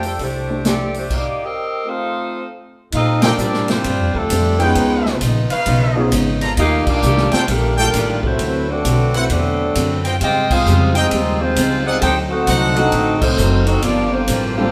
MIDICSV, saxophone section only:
0, 0, Header, 1, 2, 480
1, 0, Start_track
1, 0, Key_signature, -2, "major"
1, 0, Tempo, 454545
1, 1169, Time_signature, 4, 2, 24, 8
1, 15539, End_track
2, 0, Start_track
2, 0, Title_t, "Saxophone section"
2, 0, Program_c, 0, 65
2, 59, Note_on_c, 0, 60, 62
2, 59, Note_on_c, 0, 69, 72
2, 62, Note_on_c, 0, 55, 62
2, 63, Note_on_c, 0, 62, 61
2, 216, Note_off_c, 0, 60, 0
2, 216, Note_off_c, 0, 62, 0
2, 216, Note_off_c, 0, 69, 0
2, 217, Note_off_c, 0, 55, 0
2, 228, Note_on_c, 0, 62, 71
2, 230, Note_on_c, 0, 57, 71
2, 230, Note_on_c, 0, 67, 69
2, 232, Note_on_c, 0, 72, 80
2, 694, Note_off_c, 0, 67, 0
2, 699, Note_off_c, 0, 57, 0
2, 699, Note_off_c, 0, 62, 0
2, 700, Note_off_c, 0, 72, 0
2, 704, Note_on_c, 0, 60, 73
2, 705, Note_on_c, 0, 69, 72
2, 706, Note_on_c, 0, 67, 74
2, 706, Note_on_c, 0, 74, 82
2, 1009, Note_off_c, 0, 60, 0
2, 1010, Note_off_c, 0, 67, 0
2, 1010, Note_off_c, 0, 69, 0
2, 1010, Note_off_c, 0, 74, 0
2, 1030, Note_on_c, 0, 62, 67
2, 1031, Note_on_c, 0, 57, 69
2, 1031, Note_on_c, 0, 72, 76
2, 1033, Note_on_c, 0, 67, 66
2, 1173, Note_off_c, 0, 62, 0
2, 1174, Note_off_c, 0, 57, 0
2, 1174, Note_off_c, 0, 72, 0
2, 1175, Note_off_c, 0, 67, 0
2, 1199, Note_on_c, 0, 58, 72
2, 1200, Note_on_c, 0, 63, 77
2, 1201, Note_on_c, 0, 67, 76
2, 1201, Note_on_c, 0, 74, 89
2, 1498, Note_off_c, 0, 58, 0
2, 1498, Note_off_c, 0, 63, 0
2, 1499, Note_off_c, 0, 67, 0
2, 1499, Note_off_c, 0, 74, 0
2, 1518, Note_on_c, 0, 75, 87
2, 1520, Note_on_c, 0, 60, 77
2, 1521, Note_on_c, 0, 70, 75
2, 1522, Note_on_c, 0, 67, 79
2, 1982, Note_off_c, 0, 75, 0
2, 1983, Note_off_c, 0, 60, 0
2, 1984, Note_off_c, 0, 67, 0
2, 1984, Note_off_c, 0, 70, 0
2, 1997, Note_on_c, 0, 77, 94
2, 1998, Note_on_c, 0, 63, 79
2, 1998, Note_on_c, 0, 69, 79
2, 2000, Note_on_c, 0, 72, 77
2, 2631, Note_off_c, 0, 63, 0
2, 2631, Note_off_c, 0, 69, 0
2, 2631, Note_off_c, 0, 77, 0
2, 2632, Note_off_c, 0, 72, 0
2, 3119, Note_on_c, 0, 65, 83
2, 3120, Note_on_c, 0, 60, 87
2, 3120, Note_on_c, 0, 75, 100
2, 3121, Note_on_c, 0, 69, 81
2, 3399, Note_off_c, 0, 65, 0
2, 3400, Note_off_c, 0, 60, 0
2, 3400, Note_off_c, 0, 69, 0
2, 3400, Note_off_c, 0, 75, 0
2, 3431, Note_on_c, 0, 67, 83
2, 3432, Note_on_c, 0, 60, 85
2, 3435, Note_on_c, 0, 65, 76
2, 3436, Note_on_c, 0, 74, 93
2, 3897, Note_off_c, 0, 65, 0
2, 3901, Note_off_c, 0, 67, 0
2, 3902, Note_off_c, 0, 60, 0
2, 3904, Note_off_c, 0, 74, 0
2, 3910, Note_on_c, 0, 62, 82
2, 3910, Note_on_c, 0, 65, 81
2, 3911, Note_on_c, 0, 55, 80
2, 3913, Note_on_c, 0, 72, 96
2, 4381, Note_off_c, 0, 62, 0
2, 4381, Note_off_c, 0, 65, 0
2, 4382, Note_off_c, 0, 55, 0
2, 4383, Note_off_c, 0, 72, 0
2, 4394, Note_on_c, 0, 65, 71
2, 4396, Note_on_c, 0, 62, 73
2, 4399, Note_on_c, 0, 69, 86
2, 4400, Note_on_c, 0, 55, 77
2, 4855, Note_off_c, 0, 65, 0
2, 4864, Note_off_c, 0, 62, 0
2, 4866, Note_off_c, 0, 55, 0
2, 4866, Note_off_c, 0, 69, 0
2, 4868, Note_on_c, 0, 65, 63
2, 4869, Note_on_c, 0, 56, 64
2, 4872, Note_on_c, 0, 71, 73
2, 4875, Note_on_c, 0, 63, 70
2, 5340, Note_off_c, 0, 65, 0
2, 5341, Note_off_c, 0, 56, 0
2, 5343, Note_off_c, 0, 71, 0
2, 5344, Note_off_c, 0, 63, 0
2, 6956, Note_on_c, 0, 58, 90
2, 6956, Note_on_c, 0, 65, 87
2, 6959, Note_on_c, 0, 75, 107
2, 6960, Note_on_c, 0, 67, 90
2, 7239, Note_off_c, 0, 58, 0
2, 7239, Note_off_c, 0, 65, 0
2, 7241, Note_off_c, 0, 67, 0
2, 7241, Note_off_c, 0, 75, 0
2, 7263, Note_on_c, 0, 58, 85
2, 7265, Note_on_c, 0, 65, 89
2, 7266, Note_on_c, 0, 67, 85
2, 7267, Note_on_c, 0, 74, 98
2, 7738, Note_off_c, 0, 58, 0
2, 7739, Note_off_c, 0, 65, 0
2, 7739, Note_off_c, 0, 67, 0
2, 7740, Note_off_c, 0, 74, 0
2, 7746, Note_on_c, 0, 57, 75
2, 7747, Note_on_c, 0, 62, 78
2, 7748, Note_on_c, 0, 72, 88
2, 7749, Note_on_c, 0, 65, 81
2, 7902, Note_off_c, 0, 62, 0
2, 7903, Note_off_c, 0, 65, 0
2, 7907, Note_off_c, 0, 57, 0
2, 7908, Note_off_c, 0, 72, 0
2, 7914, Note_on_c, 0, 62, 73
2, 7915, Note_on_c, 0, 70, 84
2, 7916, Note_on_c, 0, 65, 72
2, 7918, Note_on_c, 0, 55, 74
2, 8212, Note_off_c, 0, 62, 0
2, 8213, Note_off_c, 0, 70, 0
2, 8215, Note_off_c, 0, 55, 0
2, 8216, Note_off_c, 0, 65, 0
2, 8225, Note_on_c, 0, 62, 83
2, 8226, Note_on_c, 0, 70, 95
2, 8228, Note_on_c, 0, 55, 78
2, 8229, Note_on_c, 0, 65, 80
2, 8665, Note_off_c, 0, 62, 0
2, 8665, Note_off_c, 0, 70, 0
2, 8667, Note_off_c, 0, 55, 0
2, 8667, Note_off_c, 0, 65, 0
2, 8715, Note_on_c, 0, 57, 77
2, 8719, Note_on_c, 0, 72, 88
2, 8720, Note_on_c, 0, 64, 78
2, 8720, Note_on_c, 0, 66, 81
2, 9174, Note_off_c, 0, 66, 0
2, 9183, Note_off_c, 0, 57, 0
2, 9183, Note_on_c, 0, 60, 80
2, 9183, Note_on_c, 0, 74, 86
2, 9185, Note_off_c, 0, 64, 0
2, 9185, Note_off_c, 0, 72, 0
2, 9187, Note_on_c, 0, 66, 82
2, 9188, Note_on_c, 0, 69, 84
2, 9656, Note_off_c, 0, 60, 0
2, 9657, Note_off_c, 0, 74, 0
2, 9658, Note_off_c, 0, 66, 0
2, 9659, Note_off_c, 0, 69, 0
2, 9672, Note_on_c, 0, 57, 70
2, 9672, Note_on_c, 0, 72, 80
2, 9674, Note_on_c, 0, 64, 69
2, 9674, Note_on_c, 0, 66, 71
2, 9829, Note_off_c, 0, 57, 0
2, 9829, Note_off_c, 0, 72, 0
2, 9830, Note_off_c, 0, 64, 0
2, 9830, Note_off_c, 0, 66, 0
2, 9845, Note_on_c, 0, 60, 69
2, 9845, Note_on_c, 0, 66, 69
2, 9846, Note_on_c, 0, 74, 81
2, 9848, Note_on_c, 0, 69, 73
2, 10580, Note_off_c, 0, 60, 0
2, 10580, Note_off_c, 0, 66, 0
2, 10580, Note_off_c, 0, 74, 0
2, 10581, Note_off_c, 0, 69, 0
2, 10789, Note_on_c, 0, 72, 84
2, 10792, Note_on_c, 0, 65, 86
2, 10793, Note_on_c, 0, 75, 87
2, 10797, Note_on_c, 0, 79, 101
2, 11072, Note_off_c, 0, 72, 0
2, 11074, Note_off_c, 0, 65, 0
2, 11074, Note_off_c, 0, 75, 0
2, 11077, Note_off_c, 0, 79, 0
2, 11099, Note_on_c, 0, 68, 85
2, 11100, Note_on_c, 0, 63, 82
2, 11101, Note_on_c, 0, 77, 93
2, 11102, Note_on_c, 0, 72, 87
2, 11539, Note_off_c, 0, 63, 0
2, 11539, Note_off_c, 0, 68, 0
2, 11540, Note_off_c, 0, 77, 0
2, 11541, Note_off_c, 0, 72, 0
2, 11579, Note_on_c, 0, 65, 90
2, 11580, Note_on_c, 0, 60, 84
2, 11582, Note_on_c, 0, 68, 84
2, 11582, Note_on_c, 0, 75, 95
2, 12039, Note_off_c, 0, 65, 0
2, 12052, Note_off_c, 0, 60, 0
2, 12052, Note_on_c, 0, 65, 86
2, 12053, Note_off_c, 0, 68, 0
2, 12053, Note_off_c, 0, 75, 0
2, 12054, Note_on_c, 0, 63, 84
2, 12054, Note_on_c, 0, 72, 96
2, 12055, Note_on_c, 0, 56, 82
2, 12508, Note_off_c, 0, 65, 0
2, 12518, Note_on_c, 0, 68, 75
2, 12520, Note_on_c, 0, 60, 73
2, 12520, Note_on_c, 0, 75, 86
2, 12521, Note_on_c, 0, 65, 75
2, 12528, Note_off_c, 0, 56, 0
2, 12528, Note_off_c, 0, 63, 0
2, 12528, Note_off_c, 0, 72, 0
2, 12688, Note_off_c, 0, 68, 0
2, 12689, Note_off_c, 0, 60, 0
2, 12689, Note_off_c, 0, 65, 0
2, 12689, Note_off_c, 0, 75, 0
2, 12697, Note_on_c, 0, 63, 84
2, 12698, Note_on_c, 0, 72, 85
2, 12698, Note_on_c, 0, 79, 100
2, 12701, Note_on_c, 0, 69, 83
2, 12835, Note_off_c, 0, 63, 0
2, 12836, Note_off_c, 0, 79, 0
2, 12837, Note_off_c, 0, 72, 0
2, 12838, Note_off_c, 0, 69, 0
2, 12998, Note_on_c, 0, 72, 82
2, 12999, Note_on_c, 0, 63, 82
2, 12999, Note_on_c, 0, 69, 80
2, 13002, Note_on_c, 0, 78, 94
2, 13444, Note_off_c, 0, 72, 0
2, 13445, Note_off_c, 0, 69, 0
2, 13446, Note_off_c, 0, 63, 0
2, 13447, Note_off_c, 0, 78, 0
2, 13477, Note_on_c, 0, 60, 86
2, 13477, Note_on_c, 0, 66, 90
2, 13477, Note_on_c, 0, 75, 97
2, 13478, Note_on_c, 0, 69, 84
2, 13950, Note_off_c, 0, 66, 0
2, 13957, Note_off_c, 0, 60, 0
2, 13957, Note_off_c, 0, 75, 0
2, 13958, Note_off_c, 0, 69, 0
2, 13961, Note_on_c, 0, 72, 95
2, 13962, Note_on_c, 0, 57, 83
2, 13963, Note_on_c, 0, 63, 83
2, 13963, Note_on_c, 0, 66, 82
2, 14424, Note_off_c, 0, 66, 0
2, 14436, Note_on_c, 0, 66, 77
2, 14437, Note_on_c, 0, 75, 88
2, 14438, Note_off_c, 0, 72, 0
2, 14439, Note_off_c, 0, 57, 0
2, 14439, Note_off_c, 0, 63, 0
2, 14443, Note_on_c, 0, 60, 76
2, 14443, Note_on_c, 0, 69, 73
2, 14601, Note_on_c, 0, 74, 93
2, 14603, Note_on_c, 0, 58, 85
2, 14603, Note_on_c, 0, 67, 77
2, 14604, Note_off_c, 0, 66, 0
2, 14604, Note_off_c, 0, 75, 0
2, 14607, Note_off_c, 0, 60, 0
2, 14607, Note_off_c, 0, 69, 0
2, 14609, Note_on_c, 0, 65, 82
2, 14897, Note_off_c, 0, 65, 0
2, 14897, Note_off_c, 0, 67, 0
2, 14900, Note_off_c, 0, 58, 0
2, 14908, Note_on_c, 0, 72, 94
2, 14910, Note_on_c, 0, 65, 77
2, 14910, Note_on_c, 0, 67, 79
2, 14913, Note_on_c, 0, 58, 77
2, 14914, Note_off_c, 0, 74, 0
2, 15372, Note_off_c, 0, 72, 0
2, 15373, Note_off_c, 0, 67, 0
2, 15375, Note_off_c, 0, 65, 0
2, 15377, Note_off_c, 0, 58, 0
2, 15385, Note_on_c, 0, 67, 83
2, 15385, Note_on_c, 0, 72, 98
2, 15388, Note_on_c, 0, 65, 80
2, 15389, Note_on_c, 0, 58, 82
2, 15539, Note_off_c, 0, 58, 0
2, 15539, Note_off_c, 0, 65, 0
2, 15539, Note_off_c, 0, 67, 0
2, 15539, Note_off_c, 0, 72, 0
2, 15539, End_track
0, 0, End_of_file